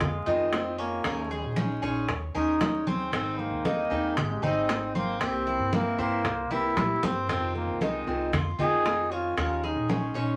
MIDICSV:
0, 0, Header, 1, 7, 480
1, 0, Start_track
1, 0, Key_signature, -4, "minor"
1, 0, Tempo, 520382
1, 966, Time_signature, 4, 2, 24, 8
1, 9559, End_track
2, 0, Start_track
2, 0, Title_t, "Cuban tres"
2, 0, Program_c, 0, 25
2, 7, Note_on_c, 0, 65, 75
2, 238, Note_off_c, 0, 65, 0
2, 242, Note_on_c, 0, 63, 83
2, 709, Note_off_c, 0, 63, 0
2, 723, Note_on_c, 0, 61, 88
2, 957, Note_off_c, 0, 61, 0
2, 967, Note_on_c, 0, 70, 73
2, 1199, Note_off_c, 0, 70, 0
2, 1208, Note_on_c, 0, 68, 79
2, 1672, Note_off_c, 0, 68, 0
2, 1683, Note_on_c, 0, 73, 83
2, 2150, Note_off_c, 0, 73, 0
2, 2166, Note_on_c, 0, 70, 83
2, 2631, Note_off_c, 0, 70, 0
2, 2647, Note_on_c, 0, 60, 94
2, 2875, Note_off_c, 0, 60, 0
2, 2886, Note_on_c, 0, 60, 85
2, 3351, Note_off_c, 0, 60, 0
2, 3367, Note_on_c, 0, 63, 68
2, 3832, Note_off_c, 0, 63, 0
2, 3845, Note_on_c, 0, 67, 77
2, 4078, Note_off_c, 0, 67, 0
2, 4084, Note_on_c, 0, 63, 83
2, 4550, Note_off_c, 0, 63, 0
2, 4567, Note_on_c, 0, 60, 91
2, 4799, Note_off_c, 0, 60, 0
2, 4803, Note_on_c, 0, 67, 73
2, 5037, Note_off_c, 0, 67, 0
2, 5044, Note_on_c, 0, 64, 75
2, 5510, Note_off_c, 0, 64, 0
2, 5523, Note_on_c, 0, 72, 80
2, 5989, Note_off_c, 0, 72, 0
2, 6002, Note_on_c, 0, 67, 80
2, 6469, Note_off_c, 0, 67, 0
2, 6483, Note_on_c, 0, 60, 87
2, 6714, Note_off_c, 0, 60, 0
2, 6725, Note_on_c, 0, 60, 85
2, 7191, Note_off_c, 0, 60, 0
2, 7207, Note_on_c, 0, 63, 69
2, 7672, Note_off_c, 0, 63, 0
2, 7687, Note_on_c, 0, 65, 76
2, 7919, Note_off_c, 0, 65, 0
2, 7928, Note_on_c, 0, 63, 81
2, 8392, Note_off_c, 0, 63, 0
2, 8408, Note_on_c, 0, 61, 84
2, 8639, Note_off_c, 0, 61, 0
2, 8647, Note_on_c, 0, 70, 79
2, 8879, Note_off_c, 0, 70, 0
2, 8887, Note_on_c, 0, 68, 82
2, 9352, Note_off_c, 0, 68, 0
2, 9363, Note_on_c, 0, 73, 77
2, 9559, Note_off_c, 0, 73, 0
2, 9559, End_track
3, 0, Start_track
3, 0, Title_t, "Steel-string acoustic guitar"
3, 0, Program_c, 1, 25
3, 239, Note_on_c, 1, 65, 70
3, 247, Note_on_c, 1, 60, 68
3, 253, Note_on_c, 1, 56, 65
3, 258, Note_on_c, 1, 51, 59
3, 469, Note_off_c, 1, 51, 0
3, 473, Note_off_c, 1, 65, 0
3, 477, Note_off_c, 1, 56, 0
3, 477, Note_off_c, 1, 60, 0
3, 480, Note_on_c, 1, 51, 51
3, 488, Note_on_c, 1, 56, 50
3, 494, Note_on_c, 1, 60, 58
3, 499, Note_on_c, 1, 65, 51
3, 950, Note_off_c, 1, 51, 0
3, 957, Note_off_c, 1, 56, 0
3, 960, Note_off_c, 1, 60, 0
3, 961, Note_on_c, 1, 51, 71
3, 963, Note_off_c, 1, 65, 0
3, 967, Note_on_c, 1, 56, 78
3, 970, Note_on_c, 1, 61, 73
3, 974, Note_on_c, 1, 63, 74
3, 979, Note_on_c, 1, 68, 81
3, 1429, Note_off_c, 1, 56, 0
3, 1433, Note_off_c, 1, 51, 0
3, 1438, Note_off_c, 1, 61, 0
3, 1440, Note_off_c, 1, 63, 0
3, 1440, Note_on_c, 1, 56, 48
3, 1442, Note_off_c, 1, 68, 0
3, 1447, Note_on_c, 1, 61, 54
3, 1457, Note_on_c, 1, 63, 55
3, 1459, Note_on_c, 1, 68, 59
3, 1668, Note_off_c, 1, 68, 0
3, 1673, Note_off_c, 1, 56, 0
3, 1677, Note_off_c, 1, 61, 0
3, 1677, Note_off_c, 1, 63, 0
3, 1679, Note_on_c, 1, 68, 75
3, 1688, Note_on_c, 1, 63, 67
3, 1693, Note_on_c, 1, 61, 65
3, 1699, Note_on_c, 1, 56, 59
3, 1912, Note_off_c, 1, 68, 0
3, 1913, Note_off_c, 1, 56, 0
3, 1917, Note_off_c, 1, 61, 0
3, 1917, Note_off_c, 1, 63, 0
3, 2163, Note_on_c, 1, 68, 75
3, 2171, Note_on_c, 1, 63, 74
3, 2176, Note_on_c, 1, 61, 61
3, 2182, Note_on_c, 1, 56, 61
3, 2390, Note_off_c, 1, 56, 0
3, 2394, Note_off_c, 1, 68, 0
3, 2398, Note_off_c, 1, 63, 0
3, 2401, Note_off_c, 1, 61, 0
3, 2401, Note_on_c, 1, 56, 49
3, 2412, Note_on_c, 1, 61, 53
3, 2418, Note_on_c, 1, 63, 51
3, 2423, Note_on_c, 1, 68, 59
3, 2873, Note_off_c, 1, 56, 0
3, 2879, Note_off_c, 1, 61, 0
3, 2880, Note_on_c, 1, 51, 66
3, 2882, Note_off_c, 1, 63, 0
3, 2884, Note_off_c, 1, 68, 0
3, 2890, Note_on_c, 1, 60, 68
3, 2895, Note_on_c, 1, 63, 69
3, 2897, Note_on_c, 1, 68, 76
3, 3353, Note_off_c, 1, 51, 0
3, 3358, Note_off_c, 1, 60, 0
3, 3360, Note_off_c, 1, 63, 0
3, 3361, Note_off_c, 1, 68, 0
3, 3362, Note_on_c, 1, 55, 54
3, 3369, Note_on_c, 1, 60, 56
3, 3374, Note_on_c, 1, 63, 59
3, 3381, Note_on_c, 1, 68, 59
3, 3585, Note_off_c, 1, 68, 0
3, 3593, Note_off_c, 1, 63, 0
3, 3594, Note_off_c, 1, 55, 0
3, 3596, Note_on_c, 1, 68, 69
3, 3597, Note_off_c, 1, 60, 0
3, 3604, Note_on_c, 1, 63, 70
3, 3609, Note_on_c, 1, 60, 63
3, 3617, Note_on_c, 1, 55, 61
3, 3831, Note_off_c, 1, 68, 0
3, 3832, Note_off_c, 1, 55, 0
3, 3835, Note_off_c, 1, 63, 0
3, 3837, Note_off_c, 1, 60, 0
3, 4078, Note_on_c, 1, 68, 74
3, 4086, Note_on_c, 1, 63, 66
3, 4092, Note_on_c, 1, 60, 68
3, 4098, Note_on_c, 1, 55, 65
3, 4312, Note_off_c, 1, 68, 0
3, 4315, Note_off_c, 1, 60, 0
3, 4316, Note_off_c, 1, 63, 0
3, 4321, Note_off_c, 1, 55, 0
3, 4326, Note_on_c, 1, 60, 52
3, 4332, Note_on_c, 1, 63, 55
3, 4339, Note_on_c, 1, 68, 58
3, 4796, Note_off_c, 1, 60, 0
3, 4796, Note_on_c, 1, 48, 68
3, 4799, Note_off_c, 1, 63, 0
3, 4802, Note_off_c, 1, 68, 0
3, 4802, Note_on_c, 1, 52, 68
3, 4807, Note_on_c, 1, 58, 66
3, 4812, Note_on_c, 1, 60, 84
3, 4815, Note_on_c, 1, 64, 77
3, 5268, Note_off_c, 1, 52, 0
3, 5271, Note_off_c, 1, 48, 0
3, 5276, Note_off_c, 1, 58, 0
3, 5279, Note_off_c, 1, 60, 0
3, 5279, Note_on_c, 1, 52, 56
3, 5280, Note_off_c, 1, 64, 0
3, 5288, Note_on_c, 1, 58, 61
3, 5295, Note_on_c, 1, 60, 60
3, 5299, Note_on_c, 1, 64, 58
3, 5508, Note_off_c, 1, 64, 0
3, 5512, Note_off_c, 1, 52, 0
3, 5517, Note_off_c, 1, 58, 0
3, 5517, Note_off_c, 1, 60, 0
3, 5519, Note_on_c, 1, 64, 66
3, 5528, Note_on_c, 1, 60, 68
3, 5533, Note_on_c, 1, 58, 61
3, 5538, Note_on_c, 1, 52, 58
3, 5752, Note_off_c, 1, 64, 0
3, 5757, Note_off_c, 1, 60, 0
3, 5758, Note_off_c, 1, 52, 0
3, 5759, Note_off_c, 1, 58, 0
3, 6001, Note_on_c, 1, 64, 78
3, 6009, Note_on_c, 1, 60, 65
3, 6013, Note_on_c, 1, 58, 68
3, 6018, Note_on_c, 1, 52, 62
3, 6231, Note_off_c, 1, 52, 0
3, 6233, Note_off_c, 1, 64, 0
3, 6236, Note_off_c, 1, 58, 0
3, 6237, Note_off_c, 1, 60, 0
3, 6242, Note_on_c, 1, 52, 49
3, 6248, Note_on_c, 1, 58, 52
3, 6260, Note_on_c, 1, 64, 51
3, 6714, Note_off_c, 1, 52, 0
3, 6716, Note_off_c, 1, 58, 0
3, 6723, Note_off_c, 1, 64, 0
3, 6724, Note_on_c, 1, 48, 69
3, 6729, Note_on_c, 1, 51, 65
3, 6732, Note_on_c, 1, 56, 72
3, 6737, Note_on_c, 1, 60, 73
3, 6743, Note_on_c, 1, 65, 71
3, 7190, Note_off_c, 1, 51, 0
3, 7195, Note_off_c, 1, 48, 0
3, 7199, Note_off_c, 1, 56, 0
3, 7201, Note_on_c, 1, 51, 55
3, 7202, Note_off_c, 1, 60, 0
3, 7204, Note_off_c, 1, 65, 0
3, 7208, Note_on_c, 1, 56, 53
3, 7213, Note_on_c, 1, 60, 55
3, 7220, Note_on_c, 1, 65, 53
3, 7430, Note_off_c, 1, 65, 0
3, 7433, Note_off_c, 1, 51, 0
3, 7437, Note_off_c, 1, 56, 0
3, 7437, Note_off_c, 1, 60, 0
3, 7441, Note_on_c, 1, 65, 63
3, 7448, Note_on_c, 1, 60, 70
3, 7453, Note_on_c, 1, 56, 62
3, 7460, Note_on_c, 1, 51, 56
3, 7672, Note_off_c, 1, 51, 0
3, 7673, Note_off_c, 1, 56, 0
3, 7673, Note_off_c, 1, 65, 0
3, 7677, Note_off_c, 1, 60, 0
3, 7919, Note_on_c, 1, 65, 71
3, 7925, Note_on_c, 1, 60, 72
3, 7930, Note_on_c, 1, 56, 64
3, 7935, Note_on_c, 1, 51, 58
3, 8147, Note_off_c, 1, 51, 0
3, 8152, Note_off_c, 1, 65, 0
3, 8155, Note_off_c, 1, 60, 0
3, 8156, Note_off_c, 1, 56, 0
3, 8158, Note_on_c, 1, 51, 45
3, 8167, Note_on_c, 1, 56, 49
3, 8172, Note_on_c, 1, 60, 51
3, 8178, Note_on_c, 1, 65, 57
3, 8632, Note_off_c, 1, 51, 0
3, 8636, Note_off_c, 1, 56, 0
3, 8639, Note_off_c, 1, 60, 0
3, 8642, Note_off_c, 1, 65, 0
3, 8642, Note_on_c, 1, 51, 73
3, 8647, Note_on_c, 1, 56, 74
3, 8649, Note_on_c, 1, 61, 70
3, 8654, Note_on_c, 1, 63, 69
3, 8658, Note_on_c, 1, 68, 74
3, 9108, Note_off_c, 1, 56, 0
3, 9113, Note_off_c, 1, 61, 0
3, 9114, Note_off_c, 1, 51, 0
3, 9119, Note_on_c, 1, 56, 54
3, 9120, Note_off_c, 1, 63, 0
3, 9122, Note_off_c, 1, 68, 0
3, 9125, Note_on_c, 1, 61, 54
3, 9131, Note_on_c, 1, 63, 57
3, 9136, Note_on_c, 1, 68, 55
3, 9344, Note_off_c, 1, 68, 0
3, 9351, Note_off_c, 1, 63, 0
3, 9352, Note_off_c, 1, 56, 0
3, 9355, Note_off_c, 1, 61, 0
3, 9355, Note_on_c, 1, 68, 77
3, 9362, Note_on_c, 1, 63, 68
3, 9365, Note_on_c, 1, 61, 67
3, 9374, Note_on_c, 1, 56, 58
3, 9559, Note_off_c, 1, 56, 0
3, 9559, Note_off_c, 1, 61, 0
3, 9559, Note_off_c, 1, 63, 0
3, 9559, Note_off_c, 1, 68, 0
3, 9559, End_track
4, 0, Start_track
4, 0, Title_t, "Trombone"
4, 0, Program_c, 2, 57
4, 7, Note_on_c, 2, 56, 86
4, 488, Note_on_c, 2, 60, 86
4, 502, Note_off_c, 2, 56, 0
4, 727, Note_off_c, 2, 60, 0
4, 734, Note_on_c, 2, 58, 85
4, 1412, Note_off_c, 2, 58, 0
4, 2180, Note_on_c, 2, 63, 103
4, 2657, Note_on_c, 2, 60, 91
4, 2671, Note_off_c, 2, 63, 0
4, 2891, Note_off_c, 2, 60, 0
4, 2899, Note_on_c, 2, 60, 103
4, 3136, Note_on_c, 2, 58, 95
4, 3150, Note_off_c, 2, 60, 0
4, 3858, Note_on_c, 2, 56, 91
4, 3872, Note_off_c, 2, 58, 0
4, 4094, Note_on_c, 2, 60, 101
4, 4108, Note_off_c, 2, 56, 0
4, 4581, Note_on_c, 2, 58, 93
4, 4595, Note_off_c, 2, 60, 0
4, 4816, Note_on_c, 2, 60, 111
4, 4830, Note_off_c, 2, 58, 0
4, 5299, Note_on_c, 2, 58, 101
4, 5312, Note_off_c, 2, 60, 0
4, 5532, Note_off_c, 2, 58, 0
4, 5539, Note_on_c, 2, 58, 105
4, 6024, Note_on_c, 2, 64, 114
4, 6038, Note_off_c, 2, 58, 0
4, 6504, Note_on_c, 2, 60, 100
4, 6517, Note_off_c, 2, 64, 0
4, 6734, Note_off_c, 2, 60, 0
4, 6742, Note_on_c, 2, 60, 104
4, 6957, Note_off_c, 2, 60, 0
4, 6983, Note_on_c, 2, 58, 93
4, 7230, Note_on_c, 2, 56, 88
4, 7244, Note_off_c, 2, 58, 0
4, 7697, Note_off_c, 2, 56, 0
4, 7945, Note_on_c, 2, 68, 124
4, 8424, Note_on_c, 2, 65, 105
4, 8438, Note_off_c, 2, 68, 0
4, 8655, Note_off_c, 2, 65, 0
4, 8660, Note_on_c, 2, 65, 104
4, 8902, Note_on_c, 2, 63, 93
4, 8915, Note_off_c, 2, 65, 0
4, 9140, Note_on_c, 2, 61, 83
4, 9154, Note_off_c, 2, 63, 0
4, 9559, Note_off_c, 2, 61, 0
4, 9559, End_track
5, 0, Start_track
5, 0, Title_t, "Upright bass"
5, 0, Program_c, 3, 32
5, 0, Note_on_c, 3, 41, 105
5, 231, Note_off_c, 3, 41, 0
5, 241, Note_on_c, 3, 41, 87
5, 927, Note_off_c, 3, 41, 0
5, 962, Note_on_c, 3, 39, 104
5, 1305, Note_off_c, 3, 39, 0
5, 1322, Note_on_c, 3, 34, 82
5, 1665, Note_off_c, 3, 34, 0
5, 1684, Note_on_c, 3, 34, 98
5, 1913, Note_off_c, 3, 34, 0
5, 1924, Note_on_c, 3, 39, 104
5, 2152, Note_off_c, 3, 39, 0
5, 2162, Note_on_c, 3, 39, 84
5, 2847, Note_off_c, 3, 39, 0
5, 2881, Note_on_c, 3, 32, 98
5, 3224, Note_off_c, 3, 32, 0
5, 3240, Note_on_c, 3, 39, 86
5, 3584, Note_off_c, 3, 39, 0
5, 3601, Note_on_c, 3, 39, 95
5, 3830, Note_off_c, 3, 39, 0
5, 3844, Note_on_c, 3, 32, 115
5, 4072, Note_off_c, 3, 32, 0
5, 4081, Note_on_c, 3, 32, 88
5, 4767, Note_off_c, 3, 32, 0
5, 4802, Note_on_c, 3, 36, 103
5, 5145, Note_off_c, 3, 36, 0
5, 5160, Note_on_c, 3, 43, 84
5, 5504, Note_off_c, 3, 43, 0
5, 5519, Note_on_c, 3, 43, 89
5, 5749, Note_off_c, 3, 43, 0
5, 5758, Note_on_c, 3, 36, 110
5, 5989, Note_off_c, 3, 36, 0
5, 6003, Note_on_c, 3, 36, 85
5, 6231, Note_off_c, 3, 36, 0
5, 6241, Note_on_c, 3, 46, 82
5, 6458, Note_off_c, 3, 46, 0
5, 6480, Note_on_c, 3, 43, 84
5, 6698, Note_off_c, 3, 43, 0
5, 6718, Note_on_c, 3, 41, 99
5, 7063, Note_off_c, 3, 41, 0
5, 7080, Note_on_c, 3, 36, 83
5, 7424, Note_off_c, 3, 36, 0
5, 7442, Note_on_c, 3, 36, 93
5, 7672, Note_off_c, 3, 36, 0
5, 7681, Note_on_c, 3, 41, 102
5, 7911, Note_off_c, 3, 41, 0
5, 7921, Note_on_c, 3, 41, 93
5, 8607, Note_off_c, 3, 41, 0
5, 8644, Note_on_c, 3, 39, 107
5, 8986, Note_off_c, 3, 39, 0
5, 9003, Note_on_c, 3, 34, 88
5, 9346, Note_off_c, 3, 34, 0
5, 9357, Note_on_c, 3, 34, 86
5, 9559, Note_off_c, 3, 34, 0
5, 9559, End_track
6, 0, Start_track
6, 0, Title_t, "Muted steel-string acoustic guitar strokes"
6, 2, Note_on_c, 9, 29, 70
6, 94, Note_off_c, 9, 29, 0
6, 1922, Note_on_c, 9, 29, 75
6, 2014, Note_off_c, 9, 29, 0
6, 3843, Note_on_c, 9, 29, 62
6, 3935, Note_off_c, 9, 29, 0
6, 5764, Note_on_c, 9, 29, 66
6, 5857, Note_off_c, 9, 29, 0
6, 7680, Note_on_c, 9, 29, 64
6, 7773, Note_off_c, 9, 29, 0
6, 9559, End_track
7, 0, Start_track
7, 0, Title_t, "Drums"
7, 4, Note_on_c, 9, 60, 70
7, 9, Note_on_c, 9, 63, 37
7, 9, Note_on_c, 9, 64, 85
7, 97, Note_off_c, 9, 60, 0
7, 101, Note_off_c, 9, 63, 0
7, 101, Note_off_c, 9, 64, 0
7, 250, Note_on_c, 9, 63, 34
7, 342, Note_off_c, 9, 63, 0
7, 485, Note_on_c, 9, 60, 78
7, 485, Note_on_c, 9, 61, 90
7, 485, Note_on_c, 9, 63, 39
7, 577, Note_off_c, 9, 60, 0
7, 577, Note_off_c, 9, 61, 0
7, 577, Note_off_c, 9, 63, 0
7, 724, Note_on_c, 9, 60, 37
7, 816, Note_off_c, 9, 60, 0
7, 962, Note_on_c, 9, 60, 72
7, 969, Note_on_c, 9, 63, 36
7, 1054, Note_off_c, 9, 60, 0
7, 1061, Note_off_c, 9, 63, 0
7, 1206, Note_on_c, 9, 60, 35
7, 1209, Note_on_c, 9, 63, 32
7, 1298, Note_off_c, 9, 60, 0
7, 1301, Note_off_c, 9, 63, 0
7, 1442, Note_on_c, 9, 60, 60
7, 1445, Note_on_c, 9, 63, 89
7, 1535, Note_off_c, 9, 60, 0
7, 1537, Note_off_c, 9, 63, 0
7, 1683, Note_on_c, 9, 60, 34
7, 1775, Note_off_c, 9, 60, 0
7, 1923, Note_on_c, 9, 60, 69
7, 1929, Note_on_c, 9, 63, 37
7, 2015, Note_off_c, 9, 60, 0
7, 2022, Note_off_c, 9, 63, 0
7, 2170, Note_on_c, 9, 63, 35
7, 2262, Note_off_c, 9, 63, 0
7, 2406, Note_on_c, 9, 60, 74
7, 2406, Note_on_c, 9, 61, 94
7, 2407, Note_on_c, 9, 63, 91
7, 2498, Note_off_c, 9, 60, 0
7, 2498, Note_off_c, 9, 61, 0
7, 2499, Note_off_c, 9, 63, 0
7, 2647, Note_on_c, 9, 63, 86
7, 2648, Note_on_c, 9, 60, 35
7, 2740, Note_off_c, 9, 60, 0
7, 2740, Note_off_c, 9, 63, 0
7, 2888, Note_on_c, 9, 63, 33
7, 2889, Note_on_c, 9, 60, 75
7, 2980, Note_off_c, 9, 63, 0
7, 2981, Note_off_c, 9, 60, 0
7, 3125, Note_on_c, 9, 63, 37
7, 3129, Note_on_c, 9, 60, 35
7, 3217, Note_off_c, 9, 63, 0
7, 3221, Note_off_c, 9, 60, 0
7, 3366, Note_on_c, 9, 63, 63
7, 3369, Note_on_c, 9, 60, 63
7, 3458, Note_off_c, 9, 63, 0
7, 3461, Note_off_c, 9, 60, 0
7, 3610, Note_on_c, 9, 60, 36
7, 3702, Note_off_c, 9, 60, 0
7, 3846, Note_on_c, 9, 60, 73
7, 3848, Note_on_c, 9, 63, 36
7, 3848, Note_on_c, 9, 64, 81
7, 3938, Note_off_c, 9, 60, 0
7, 3940, Note_off_c, 9, 63, 0
7, 3940, Note_off_c, 9, 64, 0
7, 4091, Note_on_c, 9, 63, 34
7, 4091, Note_on_c, 9, 64, 76
7, 4183, Note_off_c, 9, 63, 0
7, 4183, Note_off_c, 9, 64, 0
7, 4327, Note_on_c, 9, 60, 79
7, 4327, Note_on_c, 9, 61, 88
7, 4333, Note_on_c, 9, 63, 37
7, 4419, Note_off_c, 9, 60, 0
7, 4419, Note_off_c, 9, 61, 0
7, 4425, Note_off_c, 9, 63, 0
7, 4566, Note_on_c, 9, 60, 37
7, 4571, Note_on_c, 9, 63, 68
7, 4658, Note_off_c, 9, 60, 0
7, 4663, Note_off_c, 9, 63, 0
7, 4804, Note_on_c, 9, 60, 77
7, 4809, Note_on_c, 9, 63, 33
7, 4896, Note_off_c, 9, 60, 0
7, 4902, Note_off_c, 9, 63, 0
7, 5045, Note_on_c, 9, 60, 37
7, 5047, Note_on_c, 9, 63, 37
7, 5137, Note_off_c, 9, 60, 0
7, 5139, Note_off_c, 9, 63, 0
7, 5283, Note_on_c, 9, 63, 101
7, 5284, Note_on_c, 9, 60, 62
7, 5375, Note_off_c, 9, 63, 0
7, 5376, Note_off_c, 9, 60, 0
7, 5522, Note_on_c, 9, 60, 34
7, 5614, Note_off_c, 9, 60, 0
7, 5763, Note_on_c, 9, 60, 71
7, 5764, Note_on_c, 9, 63, 35
7, 5855, Note_off_c, 9, 60, 0
7, 5857, Note_off_c, 9, 63, 0
7, 6004, Note_on_c, 9, 63, 37
7, 6096, Note_off_c, 9, 63, 0
7, 6244, Note_on_c, 9, 60, 75
7, 6244, Note_on_c, 9, 61, 91
7, 6245, Note_on_c, 9, 63, 88
7, 6336, Note_off_c, 9, 60, 0
7, 6336, Note_off_c, 9, 61, 0
7, 6337, Note_off_c, 9, 63, 0
7, 6485, Note_on_c, 9, 60, 84
7, 6485, Note_on_c, 9, 63, 78
7, 6577, Note_off_c, 9, 60, 0
7, 6577, Note_off_c, 9, 63, 0
7, 6727, Note_on_c, 9, 63, 33
7, 6728, Note_on_c, 9, 60, 75
7, 6819, Note_off_c, 9, 63, 0
7, 6820, Note_off_c, 9, 60, 0
7, 6966, Note_on_c, 9, 60, 35
7, 6967, Note_on_c, 9, 63, 33
7, 7059, Note_off_c, 9, 60, 0
7, 7059, Note_off_c, 9, 63, 0
7, 7203, Note_on_c, 9, 63, 61
7, 7209, Note_on_c, 9, 60, 63
7, 7296, Note_off_c, 9, 63, 0
7, 7301, Note_off_c, 9, 60, 0
7, 7448, Note_on_c, 9, 60, 34
7, 7541, Note_off_c, 9, 60, 0
7, 7687, Note_on_c, 9, 60, 70
7, 7687, Note_on_c, 9, 63, 35
7, 7687, Note_on_c, 9, 64, 84
7, 7779, Note_off_c, 9, 60, 0
7, 7779, Note_off_c, 9, 63, 0
7, 7779, Note_off_c, 9, 64, 0
7, 7922, Note_on_c, 9, 63, 35
7, 7922, Note_on_c, 9, 64, 69
7, 8014, Note_off_c, 9, 63, 0
7, 8014, Note_off_c, 9, 64, 0
7, 8166, Note_on_c, 9, 63, 38
7, 8169, Note_on_c, 9, 60, 76
7, 8169, Note_on_c, 9, 61, 90
7, 8258, Note_off_c, 9, 63, 0
7, 8262, Note_off_c, 9, 60, 0
7, 8262, Note_off_c, 9, 61, 0
7, 8408, Note_on_c, 9, 60, 36
7, 8500, Note_off_c, 9, 60, 0
7, 8647, Note_on_c, 9, 60, 80
7, 8650, Note_on_c, 9, 63, 34
7, 8740, Note_off_c, 9, 60, 0
7, 8742, Note_off_c, 9, 63, 0
7, 8888, Note_on_c, 9, 60, 33
7, 8891, Note_on_c, 9, 63, 36
7, 8980, Note_off_c, 9, 60, 0
7, 8983, Note_off_c, 9, 63, 0
7, 9127, Note_on_c, 9, 60, 67
7, 9127, Note_on_c, 9, 63, 102
7, 9219, Note_off_c, 9, 60, 0
7, 9220, Note_off_c, 9, 63, 0
7, 9368, Note_on_c, 9, 60, 37
7, 9460, Note_off_c, 9, 60, 0
7, 9559, End_track
0, 0, End_of_file